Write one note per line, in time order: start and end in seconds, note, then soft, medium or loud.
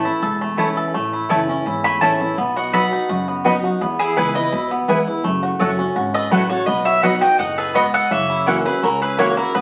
0.00 0.19 A2 medium
0.00 0.37 A3 medium
0.00 0.37 E5 medium
0.00 0.37 A5 medium
0.05 0.22 C#4 soft
0.05 0.21 E4 medium
0.05 0.55 E4 medium
0.22 0.77 E1 medium
0.22 0.90 E2 medium
0.22 0.73 A4 medium
0.41 0.91 A3 medium
0.57 0.92 E3 medium
0.57 0.67 A3 medium
0.57 0.92 A3 medium
0.57 0.93 C#4 medium
0.57 0.67 E4 medium
0.57 1.09 E4 medium
0.57 0.93 E4 medium
0.57 0.67 C#5 medium
0.57 0.68 A5 medium
0.77 1.27 A4 medium
0.94 1.21 A1 medium
0.94 1.62 A2 medium
0.94 1.45 A3 medium
1.13 1.62 E4 medium
1.29 1.61 F#1 medium
1.29 1.47 E3 medium
1.29 1.39 A3 medium
1.29 1.48 A3 medium
1.29 1.48 C#4 medium
1.29 1.39 E4 medium
1.29 1.47 E4 medium
1.29 1.81 A4 medium
1.29 1.39 C#5 loud
1.29 1.40 A5 loud
1.48 1.98 C#4 medium
1.48 1.66 C#4 medium
1.48 1.65 E4 medium
1.66 1.96 G#1 medium
1.66 2.34 E2 medium
1.66 2.17 E4 medium
1.84 2.34 A3 medium
1.84 2.00 G#5 medium
1.84 2.01 B5 loud
2.01 2.32 A1 medium
2.01 2.19 E3 medium
2.01 2.11 A3 medium
2.01 2.19 A3 medium
2.01 2.38 C#4 medium
2.01 2.20 C#4 medium
2.01 2.11 E4 loud
2.01 2.19 E4 loud
2.01 2.11 C#5 medium
2.01 2.35 E5 medium
2.01 2.52 A5 medium
2.01 2.11 A5 loud
2.20 2.37 C#4 soft
2.20 2.37 E4 medium
2.20 2.38 E4 medium
2.37 2.92 B1 medium
2.37 3.06 B2 medium
2.37 3.28 B3 medium
2.56 3.06 F#4 medium
2.56 2.72 D#5 medium
2.56 2.73 F#5 medium
2.73 2.91 F#3 medium
2.73 2.91 B3 medium
2.73 2.83 B3 medium
2.73 2.91 D#4 loud
2.73 2.83 F#4 medium
2.73 2.90 F#4 medium
2.73 3.24 A4 medium
2.73 2.83 D#5 medium
2.73 3.24 F#5 medium
2.73 3.24 B5 medium
2.73 2.83 B5 medium
2.91 3.42 D#4 medium
2.91 3.09 D#4 soft
2.91 3.08 F#4 medium
3.09 3.63 F#1 medium
3.09 3.77 F#2 loud
3.09 3.60 F#4 medium
3.28 3.78 B3 medium
3.44 3.63 F#3 medium
3.44 3.54 B3 loud
3.44 3.63 B3 medium
3.44 3.81 D#4 medium
3.44 3.63 D#4 loud
3.44 3.54 F#4 loud
3.44 3.62 F#4 loud
3.44 3.55 D#5 loud
3.44 3.55 B5 loud
3.63 3.81 D#4 soft
3.63 3.80 F#4 medium
3.63 3.81 F#4 medium
3.81 4.49 E2 medium
3.81 4.08 E2 loud
3.81 4.32 B3 medium
3.99 4.16 E4 medium
3.99 4.16 G#4 medium
4.16 4.47 C#2 medium
4.16 4.34 E3 medium
4.16 4.35 G#3 medium
4.16 4.26 B3 medium
4.16 4.35 B3 medium
4.16 4.26 E4 medium
4.16 4.34 E4 medium
4.16 4.34 G#4 medium
4.16 4.35 B4 medium
4.16 4.26 B4 medium
4.16 4.26 G#5 medium
4.35 4.53 B3 soft
4.35 4.52 E4 medium
4.35 4.51 E4 medium
4.35 4.68 B4 medium
4.35 4.69 D#5 loud
4.52 4.83 D#2 medium
4.52 5.21 B2 medium
4.52 4.87 E4 medium
4.71 5.21 B3 medium
4.88 5.19 E2 medium
4.88 5.06 E3 medium
4.88 5.06 G#3 medium
4.88 4.98 B3 medium
4.88 5.07 B3 medium
4.88 5.06 E4 medium
4.88 4.98 E4 medium
4.88 5.05 E4 medium
4.88 4.98 B4 loud
4.88 4.98 G#5 medium
5.06 5.24 B3 soft
5.06 5.23 E4 medium
5.06 5.24 E4 medium
5.24 5.52 F#1 medium
5.24 5.92 F#2 medium
5.24 5.75 A3 medium
5.43 5.95 F#4 medium
5.59 5.91 F#1 medium
5.59 5.77 F#3 medium
5.59 5.69 A3 medium
5.59 5.78 A3 medium
5.59 5.78 C#4 medium
5.59 5.69 F#4 loud
5.59 5.77 F#4 medium
5.59 6.11 A4 medium
5.59 5.70 C#5 medium
5.59 5.70 F#5 medium
5.78 6.28 C#4 medium
5.78 5.96 C#4 soft
5.78 5.95 F#4 medium
5.96 6.26 G#1 medium
5.96 6.64 C#3 medium
5.96 6.50 F#4 medium
6.14 6.64 A4 medium
6.14 6.31 B4 medium
6.14 6.31 D#5 medium
6.31 6.62 A1 medium
6.31 6.49 F#3 medium
6.31 6.41 A3 medium
6.31 6.67 A3 medium
6.31 6.50 A3 medium
6.31 6.50 C#4 medium
6.31 6.41 F#4 loud
6.31 6.49 F#4 medium
6.31 6.49 F#4 loud
6.31 6.49 B4 medium
6.31 6.41 C#5 loud
6.31 6.42 F#5 loud
6.50 6.68 C#4 soft
6.50 6.67 F#4 medium
6.50 6.86 F#4 medium
6.50 6.67 A4 medium
6.50 6.66 C#5 medium
6.66 7.22 B1 loud
6.66 7.36 B2 medium
6.66 7.18 B3 medium
6.66 6.85 B4 medium
6.66 6.85 D#5 medium
6.85 7.22 F#4 medium
6.85 7.02 C#5 medium
6.85 7.02 E5 loud
7.03 7.21 F#3 medium
7.03 7.12 B3 medium
7.03 7.21 B3 medium
7.03 7.38 D#4 medium
7.03 7.22 D#4 medium
7.03 7.13 F#4 medium
7.03 7.20 F#4 loud
7.03 7.21 D#5 medium
7.03 7.13 D#5 loud
7.03 7.21 F#5 medium
7.03 7.13 B5 loud
7.21 7.39 D#4 medium
7.21 7.38 F#4 medium
7.21 8.29 F#4 medium
7.21 7.38 D#5 medium
7.21 7.38 G5 loud
7.39 7.93 F#1 medium
7.39 7.73 A2 medium
7.39 7.90 D#4 medium
7.39 7.56 D#5 medium
7.39 7.57 F#5 medium
7.58 7.74 G#4 medium
7.58 7.93 A4 medium
7.58 7.75 B4 medium
7.74 8.09 G#2 medium
7.74 7.84 B3 loud
7.74 8.10 B3 medium
7.74 7.84 F#4 loud
7.74 7.93 B4 medium
7.74 7.93 D#5 medium
7.74 7.85 D#5 loud
7.74 7.85 B5 loud
7.94 8.11 A4 medium
7.94 8.10 D#5 medium
7.94 8.11 F#5 loud
8.11 8.65 F#1 loud
8.11 8.79 F#2 medium
8.11 8.62 A#3 medium
8.11 8.62 C#5 medium
8.11 8.62 E5 medium
8.30 8.64 E4 medium
8.46 8.64 E3 medium
8.46 8.56 A#3 medium
8.46 8.65 A#3 medium
8.46 8.82 C#4 medium
8.46 8.65 C#4 medium
8.46 8.56 E4 medium
8.46 8.64 F#4 medium
8.46 8.56 C#5 medium
8.46 8.56 F#5 loud
8.65 8.83 C#4 medium
8.65 9.00 E4 medium
8.65 8.82 F#4 medium
8.65 8.82 G#4 medium
8.65 8.82 B4 medium
8.82 9.37 C#2 medium
8.82 9.51 C#3 medium
8.82 9.34 C#4 medium
8.82 9.00 F#4 medium
8.82 9.01 A#4 medium
9.01 9.36 E4 medium
9.01 9.17 G#4 medium
9.01 9.18 B4 medium
9.18 9.36 E3 medium
9.18 9.28 A#3 loud
9.18 9.54 A#3 medium
9.18 9.37 A#3 medium
9.18 9.37 C#4 medium
9.18 9.28 E4 medium
9.18 9.36 F#4 loud
9.18 9.36 A#4 medium
9.18 9.37 C#5 medium
9.18 9.28 C#5 loud
9.18 9.28 F#5 loud
9.37 9.55 C#4 soft
9.37 9.55 E4 medium
9.37 9.53 F#4 medium
9.37 9.54 F#4 medium
9.37 9.54 A#4 medium
9.54 9.61 B1 loud
9.54 9.61 B2 medium
9.54 9.61 B3 medium
9.54 9.61 F#4 medium
9.54 9.61 B4 medium